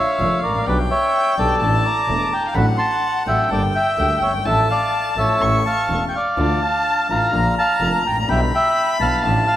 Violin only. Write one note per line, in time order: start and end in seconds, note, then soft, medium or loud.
0.00 0.68 F5 medium
0.67 1.60 G5 medium
1.60 2.44 A5 medium
2.48 2.56 F5 medium
2.55 3.49 F#5 medium
3.50 4.47 G5 medium
4.45 5.43 A5 medium
5.41 6.14 C#6 medium
6.38 7.29 A5 medium
7.34 8.30 A#5 medium
8.29 9.23 B5 medium
9.24 9.56 A5 medium